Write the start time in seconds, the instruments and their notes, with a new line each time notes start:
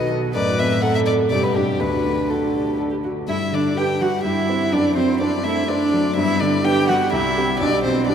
Already playing: grand piano B1 B3 A4 B4 F#5, cello B2, viola F#4
0.11 grand piano A4
0.34 grand piano F#2, cello A2, viola B4, violin D5
0.59 grand piano C4, violin E5
0.82 viola A4, grand piano A4, violin F#5
0.95 violin E5
1.06 violin D5, grand piano D5
1.30 grand piano G2, cello B2, viola G4, violin D5
1.43 violin B4
1.56 grand piano D4 G4, violin G4
1.80 grand piano D2, cello D3, viola F#4, violin B4
2.06 grand piano A3
2.30 viola F#4, grand piano F#4, violin A4
2.53 viola G4, grand piano D5
2.78 viola A4, grand piano A4
2.91 viola G4
3.04 viola F#4, grand piano F#4
3.28 grand piano G2, viola E4, cello E4, violin E5
3.52 grand piano D3, cello D4, viola D4, violin D5
3.77 grand piano D4 B4, viola G4, cello G4, violin G5
4.01 grand piano G3, viola F#4, cello F#4, violin F#5
4.24 grand piano G2, cello E4, viola E4, violin E5
4.49 grand piano C4 C5
4.72 grand piano F#2, cello D4, viola D4, violin D5
4.96 grand piano F#3, cello C4, viola C4, violin C5
5.21 grand piano D4 C5, cello D4, viola D4, violin D5
5.44 grand piano A3, cello E4, viola E4, violin E5
5.68 cello D4, grand piano D4 C5, viola D4, violin D5
5.93 grand piano F#3
6.16 grand piano G2, viola B3, cello E4, violin E5
6.40 grand piano D3, cello D4, violin D5
6.64 viola B3, grand piano D4 B4, cello G4, violin G5
6.88 grand piano G3, cello F#4, violin F#5
7.12 grand piano C2, viola G3, cello E4, violin E5
7.37 grand piano C4 G4
7.60 grand piano B1, viola G3, cello D4, violin D5
7.82 grand piano B2, cello C4, violin C5
8.07 viola G3, cello D4, grand piano D4 G4, violin D5